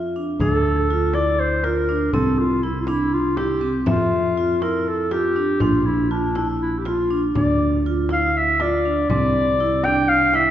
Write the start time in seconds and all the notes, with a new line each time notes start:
Already playing: F2 F4
0.16 D4
0.40 D2 D4 A4, frame drum
0.90 F4
1.14 E4 D5, frame drum
1.40 C5
1.64 F4 A#4, frame drum
1.89 D4
2.13 C2 C4 A4, frame drum
2.39 F4
2.63 E4
2.81 F4
2.87 D4 E4, frame drum
3.14 F4
3.37 E4 G4, frame drum
3.61 C4
3.86 F2 F4 E5, frame drum
4.37 F4
4.62 E4 A#4, frame drum
4.88 A4
5.11 F4 G4, frame drum
5.36 D4
5.60 A#1 D4 F4, frame drum
5.86 E4, frame drum
6.11 D4 F4
6.35 D4 E4, frame drum
6.61 E4
6.79 G4
6.85 F4, frame drum
7.10 D4
7.35 D2 D4 D5, frame drum
7.86 F4
8.09 E4 F5, frame drum
8.37 E5
8.60 F4 D5, frame drum
8.85 D4
9.10 C2 C4 D5, frame drum
9.60 E4
9.84 D4 G5, frame drum
10.09 F5
10.34 E4 E5, frame drum